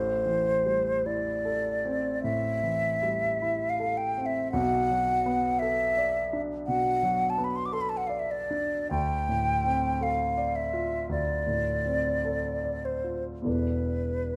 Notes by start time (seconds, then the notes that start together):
Already playing: A1 A2 C5
0.26 E3
0.66 G3
1.06 E4 D5
1.45 A4
1.85 C4
2.23 A2 E5
2.63 E3
3.03 G3
3.42 E4
3.70 F5
3.80 A4
3.97 G5
4.18 C4
4.26 E5
4.52 B1 B2 F#5
4.91 F#3
5.26 B3
5.59 A4 E5
5.97 D5
6.33 D4
6.67 B2 F#5
7.03 F#3
7.30 A5
7.38 B3
7.44 B5
7.56 C6
7.66 D6
7.73 A4 C6
7.81 B5
7.89 A5
7.97 F#5
8.07 D5 F5
8.19 E5
8.31 D5
8.51 D4
8.91 D2 G5
9.29 A2
9.65 C4
10.01 A4 F5
10.37 D5
10.56 E5
10.73 F4
11.09 D2 D5
11.47 A2
11.86 C4
12.25 A4
12.64 D5
12.85 C5
13.04 F4
13.42 E2 B3 E4 A4
13.46 E1 B4 D5